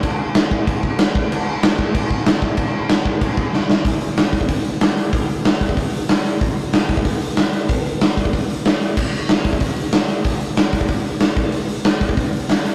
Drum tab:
CC |x---x---x---x---|x---x---x---x---|x---x---x-------|----------------|
HH |----------------|----------------|----------------|o-o-o-o-o-o-o-o-|
SD |----o-------o---|----o-------o---|----o-------o-o-|----o-------o---|
BD |o-----o-o-o---o-|------o-o-o---o-|o-----o-o-o-----|o-----ooo-------|

CC |----------------|----------------|----------------|x---------------|
HH |o-o-o-o-o-o-o-o-|o-o-o-o-o-o-o-o-|o-o-o-o-o-o-o-o-|--o-o-o-o-o-o-o-|
SD |----o-------o---|----o-------o---|----o-------o---|----o-------o---|
BD |o-----ooo-------|o-----ooo-------|o-----ooo-------|o-----ooo-------|

CC |----------------|----------------|
HH |o-o-o-o-o-o-o-o-|o-o-o-o-o-o-o-o-|
SD |----o-------o---|----o-------o---|
BD |o-----ooo-----o-|------ooo-------|